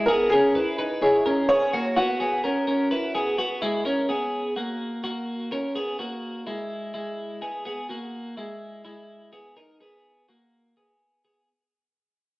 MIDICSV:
0, 0, Header, 1, 3, 480
1, 0, Start_track
1, 0, Tempo, 472441
1, 84, Time_signature, 4, 2, 24, 8
1, 6324, Tempo, 478088
1, 12521, End_track
2, 0, Start_track
2, 0, Title_t, "Upright piano"
2, 0, Program_c, 0, 0
2, 60, Note_on_c, 0, 70, 99
2, 294, Note_off_c, 0, 70, 0
2, 300, Note_on_c, 0, 68, 103
2, 1016, Note_off_c, 0, 68, 0
2, 1031, Note_on_c, 0, 68, 96
2, 1481, Note_off_c, 0, 68, 0
2, 1511, Note_on_c, 0, 73, 102
2, 1996, Note_on_c, 0, 66, 96
2, 2008, Note_off_c, 0, 73, 0
2, 3394, Note_off_c, 0, 66, 0
2, 12521, End_track
3, 0, Start_track
3, 0, Title_t, "Clean electric guitar"
3, 0, Program_c, 1, 27
3, 84, Note_on_c, 1, 68, 119
3, 93, Note_on_c, 1, 59, 94
3, 323, Note_off_c, 1, 68, 0
3, 327, Note_on_c, 1, 70, 93
3, 328, Note_off_c, 1, 59, 0
3, 334, Note_on_c, 1, 61, 70
3, 557, Note_off_c, 1, 70, 0
3, 561, Note_on_c, 1, 71, 80
3, 568, Note_off_c, 1, 61, 0
3, 571, Note_on_c, 1, 64, 60
3, 785, Note_off_c, 1, 71, 0
3, 798, Note_on_c, 1, 71, 78
3, 801, Note_off_c, 1, 64, 0
3, 805, Note_on_c, 1, 63, 66
3, 1035, Note_off_c, 1, 71, 0
3, 1039, Note_on_c, 1, 73, 78
3, 1043, Note_off_c, 1, 63, 0
3, 1045, Note_on_c, 1, 64, 64
3, 1275, Note_off_c, 1, 73, 0
3, 1279, Note_on_c, 1, 70, 85
3, 1282, Note_off_c, 1, 64, 0
3, 1289, Note_on_c, 1, 61, 68
3, 1512, Note_off_c, 1, 70, 0
3, 1516, Note_on_c, 1, 68, 77
3, 1524, Note_off_c, 1, 61, 0
3, 1525, Note_on_c, 1, 59, 62
3, 1757, Note_off_c, 1, 68, 0
3, 1758, Note_off_c, 1, 59, 0
3, 1762, Note_on_c, 1, 66, 90
3, 1770, Note_on_c, 1, 58, 69
3, 1984, Note_off_c, 1, 66, 0
3, 1996, Note_on_c, 1, 66, 116
3, 2004, Note_off_c, 1, 58, 0
3, 2005, Note_on_c, 1, 59, 84
3, 2232, Note_off_c, 1, 66, 0
3, 2233, Note_off_c, 1, 59, 0
3, 2236, Note_on_c, 1, 68, 83
3, 2245, Note_on_c, 1, 59, 71
3, 2475, Note_off_c, 1, 68, 0
3, 2479, Note_on_c, 1, 70, 81
3, 2481, Note_off_c, 1, 59, 0
3, 2488, Note_on_c, 1, 61, 68
3, 2704, Note_off_c, 1, 70, 0
3, 2710, Note_off_c, 1, 61, 0
3, 2716, Note_on_c, 1, 70, 77
3, 2722, Note_on_c, 1, 61, 66
3, 2953, Note_off_c, 1, 70, 0
3, 2957, Note_on_c, 1, 71, 76
3, 2959, Note_off_c, 1, 61, 0
3, 2966, Note_on_c, 1, 64, 64
3, 3193, Note_off_c, 1, 71, 0
3, 3197, Note_on_c, 1, 68, 80
3, 3200, Note_off_c, 1, 64, 0
3, 3204, Note_on_c, 1, 59, 68
3, 3434, Note_off_c, 1, 68, 0
3, 3435, Note_off_c, 1, 59, 0
3, 3438, Note_on_c, 1, 66, 78
3, 3447, Note_on_c, 1, 59, 62
3, 3673, Note_off_c, 1, 66, 0
3, 3677, Note_on_c, 1, 64, 91
3, 3681, Note_off_c, 1, 59, 0
3, 3685, Note_on_c, 1, 56, 67
3, 3909, Note_off_c, 1, 64, 0
3, 3914, Note_on_c, 1, 70, 81
3, 3917, Note_off_c, 1, 56, 0
3, 3921, Note_on_c, 1, 61, 67
3, 4152, Note_off_c, 1, 70, 0
3, 4156, Note_on_c, 1, 68, 77
3, 4159, Note_off_c, 1, 61, 0
3, 4165, Note_on_c, 1, 59, 59
3, 4608, Note_off_c, 1, 68, 0
3, 4613, Note_off_c, 1, 59, 0
3, 4637, Note_on_c, 1, 66, 60
3, 4647, Note_on_c, 1, 58, 48
3, 5089, Note_off_c, 1, 66, 0
3, 5095, Note_off_c, 1, 58, 0
3, 5119, Note_on_c, 1, 66, 62
3, 5126, Note_on_c, 1, 58, 44
3, 5572, Note_off_c, 1, 66, 0
3, 5576, Note_off_c, 1, 58, 0
3, 5609, Note_on_c, 1, 70, 72
3, 5616, Note_on_c, 1, 61, 62
3, 5843, Note_off_c, 1, 70, 0
3, 5847, Note_on_c, 1, 68, 86
3, 5849, Note_off_c, 1, 61, 0
3, 5856, Note_on_c, 1, 59, 69
3, 6083, Note_off_c, 1, 68, 0
3, 6087, Note_on_c, 1, 66, 71
3, 6091, Note_off_c, 1, 59, 0
3, 6096, Note_on_c, 1, 58, 57
3, 6537, Note_off_c, 1, 66, 0
3, 6542, Note_off_c, 1, 58, 0
3, 6567, Note_on_c, 1, 64, 60
3, 6574, Note_on_c, 1, 56, 44
3, 7015, Note_off_c, 1, 64, 0
3, 7019, Note_off_c, 1, 56, 0
3, 7042, Note_on_c, 1, 64, 63
3, 7049, Note_on_c, 1, 56, 47
3, 7492, Note_off_c, 1, 64, 0
3, 7496, Note_off_c, 1, 56, 0
3, 7524, Note_on_c, 1, 68, 71
3, 7532, Note_on_c, 1, 59, 57
3, 7748, Note_off_c, 1, 68, 0
3, 7757, Note_off_c, 1, 59, 0
3, 7760, Note_on_c, 1, 68, 88
3, 7769, Note_on_c, 1, 59, 64
3, 7995, Note_off_c, 1, 68, 0
3, 7999, Note_on_c, 1, 66, 77
3, 8004, Note_off_c, 1, 59, 0
3, 8007, Note_on_c, 1, 58, 56
3, 8450, Note_off_c, 1, 66, 0
3, 8454, Note_off_c, 1, 58, 0
3, 8481, Note_on_c, 1, 64, 57
3, 8491, Note_on_c, 1, 56, 45
3, 8931, Note_off_c, 1, 64, 0
3, 8936, Note_off_c, 1, 56, 0
3, 8957, Note_on_c, 1, 64, 56
3, 8966, Note_on_c, 1, 56, 43
3, 9409, Note_off_c, 1, 64, 0
3, 9414, Note_off_c, 1, 56, 0
3, 9438, Note_on_c, 1, 68, 72
3, 9444, Note_on_c, 1, 59, 57
3, 9676, Note_off_c, 1, 68, 0
3, 9680, Note_on_c, 1, 70, 84
3, 9681, Note_off_c, 1, 59, 0
3, 9688, Note_on_c, 1, 63, 61
3, 9915, Note_off_c, 1, 70, 0
3, 9919, Note_on_c, 1, 68, 67
3, 9924, Note_off_c, 1, 63, 0
3, 9928, Note_on_c, 1, 59, 58
3, 10371, Note_off_c, 1, 68, 0
3, 10376, Note_off_c, 1, 59, 0
3, 10402, Note_on_c, 1, 66, 52
3, 10410, Note_on_c, 1, 58, 46
3, 10853, Note_off_c, 1, 66, 0
3, 10857, Note_off_c, 1, 58, 0
3, 10887, Note_on_c, 1, 68, 55
3, 10895, Note_on_c, 1, 59, 44
3, 11336, Note_off_c, 1, 68, 0
3, 11340, Note_off_c, 1, 59, 0
3, 11366, Note_on_c, 1, 68, 69
3, 11374, Note_on_c, 1, 59, 52
3, 11605, Note_off_c, 1, 68, 0
3, 11608, Note_off_c, 1, 59, 0
3, 12521, End_track
0, 0, End_of_file